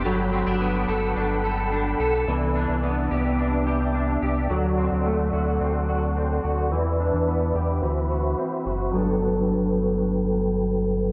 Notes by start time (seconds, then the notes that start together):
Already playing: B3 D4 G4
0.05 G1 F#3 A4 F#5 G5 B5
0.33 C4
0.47 G1 D4
0.61 B3
0.88 G1 A4
1.16 G1 D4
1.44 A4
1.72 D4
2.00 B1 A4
2.27 C2 E3 B3 D5 E5
2.56 D4
2.69 C2
2.83 B3
3.11 C2 G4
3.39 D4
3.67 G4
3.94 D4
4.22 C2 G4
4.50 D2 F#3 A4 F#5
4.78 C4
4.92 D2
5.06 A3
5.33 D2 F#4
5.61 D2 C4
5.88 F#4
6.17 C4
6.44 D2 F#4
6.71 E2 E3 B4 E5
7.00 D4
7.14 E2
7.27 B3
7.55 E2 G4
7.82 D2 E3 F#4 C5 B5
8.11 F#4
8.39 C4
8.66 F#1 F#4
8.92 G1 F#3 B3 A4 B4 G5
8.96 D4 A4